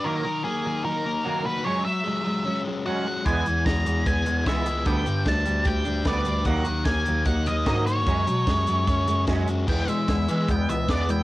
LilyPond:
<<
  \new Staff \with { instrumentName = "Lead electric guitar" } { \time 4/4 \key e \lydian \tempo 4 = 149 ais'4 gis'4 ais'4. b'8 | cis''8 e''2 r8 fis''4 | gis''4 ais''4 gis''4 e''4 | g''4 a''4 g''4 d''4 |
fis''4 gis''4 fis''8 dis''8 dis''8 cis''8~ | cis''2. r4 | g''8 e''4. g''8 e''8 d''8 g''8 | }
  \new Staff \with { instrumentName = "Overdriven electric guitar" } { \clef bass \time 4/4 \key e \lydian dis8 dis8 ais8 dis8 dis'8 ais8 fis'8 ais8 | fis8 fis8 gis8 fis8 cis'8 gis8 fis'8 gis8 | e8 e8 gis8 e8 b8 gis8 e'8 gis8 | d8 g8 d'8 g8 g'8 d'8 b'8 d'8 |
dis8 dis8 ais8 dis8 dis'8 ais8 fis'8 ais8 | fis8 fis8 gis8 fis8 cis'8 gis8 fis'8 gis8 | <e gis b>8 <e gis>8 <e gis>8 <e gis b>8 <e gis>8 <e gis>8 <e gis b>8 <e gis>8 | }
  \new Staff \with { instrumentName = "Clean electric guitar" } { \clef bass \time 4/4 \key e \lydian <dis fis ais>8 <dis fis>8 <dis fis>8 <dis fis>8 <dis fis>8 <dis fis>8 <dis fis ais>8 <dis fis>8 | <fis gis cis'>8 <fis gis>8 <fis gis>8 <fis gis>8 <fis gis>8 <fis gis>8 <fis gis cis'>8 <fis gis>8 | <e gis b>8 <e gis>8 <e gis>8 <e gis>8 <e gis>8 <e gis>8 <e gis b>8 <e gis>8 | <d g b>8 <d g>8 <d g>8 <d g>8 <d g>8 <d g>8 <d g b>8 <d g>8 |
<dis fis ais>8 <dis fis>8 <dis fis>8 <dis fis>8 <dis fis>8 <dis fis>8 <dis fis ais>8 <dis fis>8 | <fis gis cis'>8 <fis gis>8 <fis gis>8 <fis gis>8 <fis gis>8 <fis gis>8 <fis gis cis'>8 <fis gis>8 | e8 gis8 e'8 gis8 b8 e8 b8 e'8 | }
  \new Staff \with { instrumentName = "Bass clarinet" } { \clef bass \time 4/4 \key e \lydian r1 | r1 | e,8 e,8 e,8 e,8 e,8 e,8 cis,4 | d,8 g,8 d,8 d,8 d,8 d,8 d,8 d,8 |
dis,8 dis,8 dis,8 dis,8 dis,8 dis,8 gis,4 | fis,8 b,8 fis,8 fis,8 fis,8 fis,8 fis,8 fis,8 | e,8 r8 e,8 e8 e,8 cis,8 e,4 | }
  \new DrumStaff \with { instrumentName = "Drums" } \drummode { \time 4/4 r4 r4 r4 r4 | r4 r4 r4 r4 | <hh bd>8 hh8 <hh bd sn>8 hh8 <hh bd>8 hh8 <hh bd sn>8 hh8 | <hh bd>8 hh8 <hh bd sn>8 hh8 <hh bd>8 hh8 <hh bd sn>8 hh8 |
<hh bd>8 hh8 <hh bd sn>8 hh8 <hh bd>8 hh8 <hh bd sn>8 hh8 | <hh bd>8 hh8 <hh bd sn>8 hh8 <hh bd>8 hh8 <hh bd sn>8 hh8 | <cymc bd>8 hh8 <hh bd sn>8 hh8 <hh bd>8 hh8 <hh bd sn>8 hh8 | }
>>